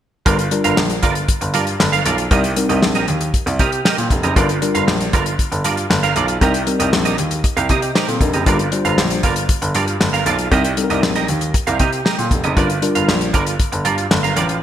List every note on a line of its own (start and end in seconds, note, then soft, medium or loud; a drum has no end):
0.26 0.45 G1 loud
0.26 0.37 G3 medium
0.26 0.37 D4 medium
0.26 0.46 F4 medium
0.26 0.38 F4 medium
0.26 0.38 A#4 medium
0.26 0.37 D5 medium
0.26 kick loud
0.26 closed hi-hat medium
0.39 muted clean electric guitar stroke soft
0.39 closed hi-hat medium
0.51 0.98 G3 medium
0.51 0.98 D4 medium
0.51 0.98 F4 medium
0.51 0.98 A#4 medium
0.51 muted clean electric guitar stroke soft
0.51 closed hi-hat medium
0.64 0.74 G1 medium
0.64 0.81 F4 soft
0.64 0.81 A#4 medium
0.64 0.81 F5 medium
0.64 closed hi-hat medium
0.77 0.97 A#1 medium
0.77 snare loud
0.77 clap medium
0.90 muted clean electric guitar stroke soft
0.90 closed hi-hat medium
1.03 1.22 G1 medium
1.03 1.23 F4 medium
1.03 1.15 A#4 medium
1.03 1.14 D5 medium
1.03 kick medium
1.03 closed hi-hat medium
1.15 muted clean electric guitar stroke soft
1.15 closed hi-hat medium
1.28 kick medium
1.28 closed hi-hat medium
1.41 1.51 G1 medium
1.41 muted clean electric guitar stroke soft
1.41 closed hi-hat medium
1.54 1.73 G2 medium
1.54 1.74 F4 medium
1.54 1.66 A#4 medium
1.54 1.66 D5 medium
1.54 closed hi-hat medium
1.67 muted clean electric guitar stroke soft
1.67 closed hi-hat soft
1.80 1.99 G1 loud
1.80 muted clean electric guitar stroke soft
1.80 snare medium
1.80 clap medium
1.92 2.04 F4 soft
1.92 2.05 A#4 medium
1.92 2.06 F5 medium
1.92 closed hi-hat soft
2.05 2.25 B1 medium
2.05 2.26 F4 medium
2.05 2.18 A#4 medium
2.05 2.17 D5 loud
2.05 closed hi-hat medium
2.18 muted clean electric guitar stroke soft
2.18 closed hi-hat soft
2.31 2.50 C2 loud
2.31 2.42 G3 medium
2.31 2.43 C4 medium
2.31 2.43 D#4 medium
2.31 2.51 G4 medium
2.31 2.43 A#4 medium
2.31 2.43 D#5 medium
2.31 kick loud
2.31 closed hi-hat medium
2.44 muted clean electric guitar stroke soft
2.44 closed hi-hat soft
2.56 3.03 G3 medium
2.56 3.03 C4 medium
2.56 3.03 D#4 medium
2.56 3.03 A#4 medium
2.56 muted clean electric guitar stroke soft
2.56 closed hi-hat medium
2.69 2.79 C2 medium
2.69 2.81 G4 soft
2.69 2.82 A#4 medium
2.69 2.82 D#5 medium
2.69 closed hi-hat soft
2.82 3.02 A#1 medium
2.82 snare loud
2.82 clap medium
2.95 3.07 G4 medium
2.95 3.07 A#4 medium
2.95 3.08 D#5 medium
2.95 closed hi-hat soft
3.08 3.27 D#2 medium
3.08 muted clean electric guitar stroke soft
3.08 closed hi-hat medium
3.21 muted clean electric guitar stroke soft
3.21 closed hi-hat medium
3.34 kick medium
3.34 closed hi-hat medium
3.46 3.59 C2 medium
3.46 muted clean electric guitar stroke soft
3.46 closed hi-hat medium
3.59 3.79 C3 medium
3.59 3.80 G4 medium
3.59 3.72 A#4 medium
3.59 3.71 D#5 medium
3.59 kick medium
3.59 closed hi-hat medium
3.72 muted clean electric guitar stroke soft
3.72 closed hi-hat soft
3.85 4.05 G4 medium
3.85 3.98 A#4 medium
3.85 3.97 D#5 medium
3.85 snare medium
3.85 clap medium
3.98 4.07 A#2 medium
3.98 muted clean electric guitar stroke soft
3.98 closed hi-hat soft
4.10 4.20 F1 medium
4.10 muted clean electric guitar stroke soft
4.10 kick medium
4.10 closed hi-hat medium
4.23 4.33 F#1 medium
4.23 4.36 G4 medium
4.23 4.36 A#4 medium
4.23 4.37 D#5 medium
4.23 closed hi-hat soft
4.36 4.56 G1 loud
4.36 4.48 G3 medium
4.36 4.48 D4 medium
4.36 4.57 F4 medium
4.36 4.48 F4 medium
4.36 4.49 A#4 medium
4.36 4.48 A#4 medium
4.36 4.48 D5 medium
4.36 kick loud
4.36 closed hi-hat medium
4.49 muted clean electric guitar stroke soft
4.49 closed hi-hat medium
4.62 5.08 G3 medium
4.62 5.08 D4 medium
4.62 5.08 F4 medium
4.62 5.08 A#4 medium
4.62 muted clean electric guitar stroke soft
4.62 closed hi-hat medium
4.75 4.84 G1 medium
4.75 4.92 F4 medium
4.75 4.91 A#4 medium
4.75 4.91 F5 medium
4.75 closed hi-hat medium
4.87 5.07 A#1 medium
4.87 snare loud
4.87 clap medium
5.00 muted clean electric guitar stroke soft
5.00 closed hi-hat medium
5.13 5.33 G1 medium
5.13 5.34 F4 medium
5.13 5.26 A#4 medium
5.13 5.25 D5 medium
5.13 kick medium
5.13 closed hi-hat medium
5.26 muted clean electric guitar stroke soft
5.26 closed hi-hat medium
5.39 kick medium
5.39 closed hi-hat medium
5.52 5.61 G1 medium
5.52 muted clean electric guitar stroke soft
5.52 closed hi-hat medium
5.64 5.84 G2 medium
5.64 5.85 F4 medium
5.64 5.77 A#4 medium
5.64 5.76 D5 medium
5.64 closed hi-hat medium
5.77 muted clean electric guitar stroke soft
5.77 closed hi-hat soft
5.90 6.09 G1 loud
5.90 muted clean electric guitar stroke soft
5.90 snare medium
5.90 clap medium
6.03 6.15 F4 soft
6.03 6.15 A#4 medium
6.03 6.17 F5 medium
6.03 closed hi-hat soft
6.16 6.35 B1 medium
6.16 6.36 F4 medium
6.16 6.28 A#4 medium
6.16 6.28 D5 loud
6.16 closed hi-hat medium
6.28 muted clean electric guitar stroke soft
6.28 closed hi-hat soft
6.41 6.61 C2 loud
6.41 6.53 G3 medium
6.41 6.53 C4 medium
6.41 6.53 D#4 medium
6.41 6.62 G4 medium
6.41 6.53 A#4 loud
6.41 6.54 A#4 medium
6.41 6.53 D#5 medium
6.41 kick medium
6.41 closed hi-hat medium
6.54 muted clean electric guitar stroke medium
6.54 closed hi-hat medium
6.67 7.13 G3 medium
6.67 7.13 C4 medium
6.67 7.13 D#4 medium
6.67 7.13 A#4 medium
6.67 muted clean electric guitar stroke soft
6.67 closed hi-hat medium
6.80 6.89 C2 medium
6.80 6.91 G4 soft
6.80 6.92 A#4 soft
6.80 6.92 D#5 medium
6.80 closed hi-hat medium
6.93 7.12 A#1 medium
6.93 snare loud
6.93 clap medium
7.05 7.17 G4 medium
7.05 7.17 A#4 medium
7.05 7.18 D#5 medium
7.05 closed hi-hat medium
7.18 7.37 D#2 medium
7.18 muted clean electric guitar stroke soft
7.18 closed hi-hat medium
7.31 muted clean electric guitar stroke soft
7.31 closed hi-hat medium
7.44 muted clean electric guitar stroke soft
7.44 kick medium
7.44 closed hi-hat medium
7.57 7.69 C2 medium
7.57 7.68 G4 medium
7.57 7.69 A#4 medium
7.57 7.70 F5 medium
7.57 closed hi-hat medium
7.69 7.89 C3 medium
7.69 7.90 G4 medium
7.69 7.82 A#4 medium
7.69 7.81 D#5 medium
7.69 kick medium
7.69 closed hi-hat medium
7.82 7.95 G4 soft
7.82 7.95 D#5 medium
7.82 muted clean electric guitar stroke soft
7.82 closed hi-hat soft
7.95 8.08 D#4 medium
7.95 8.16 G4 medium
7.95 8.08 A#4 medium
7.95 8.07 C5 medium
7.95 8.07 D#5 medium
7.95 snare loud
7.95 clap medium
8.08 8.18 A#2 medium
8.08 8.21 C4 medium
8.08 8.20 A4 medium
8.08 muted clean electric guitar stroke soft
8.08 closed hi-hat soft
8.21 8.30 F1 medium
8.21 8.33 D4 medium
8.21 8.33 A#4 medium
8.21 muted clean electric guitar stroke soft
8.21 kick medium
8.21 closed hi-hat medium
8.33 8.43 F#1 medium
8.33 8.58 A#3 soft
8.33 8.58 G4 soft
8.33 8.46 G4 soft
8.33 8.46 A#4 soft
8.33 8.47 D#5 medium
8.33 closed hi-hat soft
8.46 8.66 G1 loud
8.46 8.58 G3 medium
8.46 8.58 D4 medium
8.46 8.67 F4 medium
8.46 8.58 F4 medium
8.46 8.58 A#4 medium
8.46 8.59 A#4 medium
8.46 8.58 D5 medium
8.46 kick loud
8.46 closed hi-hat medium
8.59 muted clean electric guitar stroke soft
8.59 closed hi-hat medium
8.72 9.18 G3 medium
8.72 9.18 D4 medium
8.72 9.18 F4 medium
8.72 9.19 C5 medium
8.72 muted clean electric guitar stroke soft
8.72 closed hi-hat medium
8.85 8.94 G1 medium
8.85 9.02 F4 soft
8.85 9.01 A#4 soft
8.85 9.01 F5 medium
8.85 closed hi-hat soft
8.98 9.17 A#1 medium
8.98 snare loud
8.98 clap medium
9.10 muted clean electric guitar stroke soft
9.10 closed hi-hat medium
9.23 9.43 G1 medium
9.23 9.44 F4 medium
9.23 9.36 A#4 medium
9.23 9.35 D5 medium
9.23 kick medium
9.23 closed hi-hat medium
9.36 muted clean electric guitar stroke soft
9.36 closed hi-hat medium
9.49 kick loud
9.49 closed hi-hat medium
9.62 9.72 G1 medium
9.62 muted clean electric guitar stroke soft
9.62 closed hi-hat medium
9.75 9.94 G2 medium
9.75 9.95 F4 medium
9.75 9.87 A#4 medium
9.75 9.86 D5 medium
9.75 closed hi-hat medium
9.87 muted clean electric guitar stroke soft
9.87 closed hi-hat soft
10.00 10.20 G1 medium
10.00 muted clean electric guitar stroke soft
10.00 snare loud
10.00 clap medium
10.13 10.25 F4 medium
10.13 10.25 A#4 medium
10.13 10.26 F5 medium
10.13 closed hi-hat medium
10.26 10.45 B1 medium
10.26 10.46 F4 medium
10.26 10.39 A#4 medium
10.26 10.38 D5 loud
10.26 closed hi-hat medium
10.39 muted clean electric guitar stroke medium
10.39 closed hi-hat soft
10.51 10.71 C2 loud
10.51 10.63 G3 medium
10.51 10.63 C4 medium
10.51 10.63 D#4 medium
10.51 10.72 G4 medium
10.51 10.63 A#4 medium
10.51 10.64 A#4 medium
10.51 10.63 D#5 medium
10.51 kick loud
10.51 closed hi-hat medium
10.64 muted clean electric guitar stroke soft
10.64 closed hi-hat medium
10.77 11.23 G3 medium
10.77 11.23 C4 medium
10.77 11.24 D#4 medium
10.77 10.84 A4 medium
10.77 muted clean electric guitar stroke soft
10.77 closed hi-hat medium
10.84 11.27 A#4 medium
10.90 11.00 C2 medium
10.90 11.02 G4 soft
10.90 11.02 A#4 medium
10.90 11.03 D#5 medium
10.90 closed hi-hat medium
11.03 11.22 A#1 medium
11.03 snare medium
11.03 clap medium
11.15 11.27 G4 medium
11.15 11.28 A#4 medium
11.15 11.28 D#5 medium
11.15 closed hi-hat medium
11.28 11.48 D#2 medium
11.28 muted clean electric guitar stroke soft
11.28 closed hi-hat medium
11.41 muted clean electric guitar stroke soft
11.41 closed hi-hat medium
11.54 muted clean electric guitar stroke soft
11.54 kick loud
11.54 closed hi-hat medium
11.67 11.80 C2 medium
11.67 11.78 G4 medium
11.67 11.79 A#4 medium
11.67 11.80 F5 medium
11.67 closed hi-hat medium
11.79 11.99 C3 medium
11.79 12.00 G4 medium
11.79 11.92 A#4 medium
11.79 11.91 D#5 medium
11.79 kick medium
11.79 closed hi-hat medium
11.92 muted clean electric guitar stroke soft
11.92 closed hi-hat soft
12.05 12.26 G4 medium
12.05 12.18 A#4 medium
12.05 12.17 D#5 medium
12.05 snare loud
12.05 clap medium
12.18 12.28 A#2 medium
12.18 muted clean electric guitar stroke soft
12.18 closed hi-hat soft
12.31 12.41 F1 medium
12.31 muted clean electric guitar stroke soft
12.31 kick loud
12.31 closed hi-hat medium
12.44 12.54 F#1 medium
12.44 12.56 G4 soft
12.44 12.56 A#4 medium
12.44 12.57 D#5 medium
12.44 closed hi-hat soft
12.56 12.76 G1 loud
12.56 12.68 G3 medium
12.56 12.68 D4 medium
12.56 12.77 F4 loud
12.56 12.68 F4 medium
12.56 12.69 A#4 medium
12.56 12.69 D5 medium
12.56 kick loud
12.56 closed hi-hat medium
12.70 muted clean electric guitar stroke soft
12.70 closed hi-hat soft
12.82 13.28 G3 medium
12.82 13.28 D4 medium
12.82 13.29 F4 medium
12.82 13.29 A#4 medium
12.82 muted clean electric guitar stroke soft
12.82 closed hi-hat medium
12.95 13.05 G1 medium
12.95 13.12 F4 soft
12.95 13.12 A#4 soft
12.95 13.12 F5 medium
12.95 closed hi-hat medium
13.08 13.27 A#1 medium
13.08 snare loud
13.08 clap medium
13.21 muted clean electric guitar stroke soft
13.21 closed hi-hat soft
13.33 13.53 G1 medium
13.33 13.54 F4 medium
13.33 13.46 A#4 medium
13.33 13.45 D5 medium
13.33 kick medium
13.33 closed hi-hat medium
13.46 muted clean electric guitar stroke soft
13.46 closed hi-hat medium
13.60 kick loud
13.60 closed hi-hat medium
13.72 13.82 G1 medium
13.72 muted clean electric guitar stroke soft
13.72 closed hi-hat medium
13.85 14.04 G2 medium
13.85 14.05 F4 medium
13.85 13.97 A#4 medium
13.85 13.97 D5 medium
13.85 closed hi-hat medium
13.98 muted clean electric guitar stroke soft
13.98 closed hi-hat soft
14.11 14.30 G1 medium
14.11 muted clean electric guitar stroke soft
14.11 snare loud
14.11 clap medium
14.23 14.35 F4 soft
14.23 14.35 A#4 medium
14.23 14.37 F5 medium
14.23 closed hi-hat soft
14.36 14.56 A1 medium
14.36 14.57 F4 medium
14.36 14.49 A#4 medium
14.36 14.48 D5 loud
14.36 closed hi-hat medium
14.49 muted clean electric guitar stroke soft
14.49 closed hi-hat soft